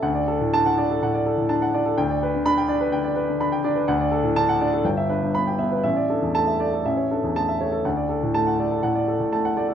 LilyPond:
\new Staff \with { instrumentName = "Grand piano" } { \time 4/4 \key d \major \tempo 4 = 124 << { d,4 <d' a''>8 d'8 a,8 r8 d'8 d'8 | d,4 <d' b''>8 d'8 d8 r8 d'8 d'8 | d,4 <d' a''>8 d'8 g,,8 d'16 r16 <b b''>8 b8 | a,,8 d'16 r16 <a a''>8 a8 a,,8 d'16 r16 <a a''>8 a8 |
d,4 <a a''>8 a8 a,8 r8 a8 a8 | } \\ { fis''16 d''16 a'16 a,8 fis''16 d''16 a'16 fis''16 d''16 a'16 a,16 a''16 fis''16 d''16 a'16 | g''16 d''16 b'16 d8 g''16 d''16 b'16 g''16 d''16 b'16 d16 b''16 g''16 d''16 b'16 | fis''16 d''16 a'16 a,8 fis''16 d''16 a'16 g''16 e''16 b'16 g,8 g''16 e''16 b'16 | e''16 d''16 a'16 e,8 e''16 d''16 a'16 e''16 cis''16 a'16 e,8 e''16 cis''16 a'16 |
fis''16 d''16 a'16 a,8 fis''16 d''16 a'16 fis''16 d''16 a'16 a,16 a''16 fis''16 d''16 a'16 | } >> }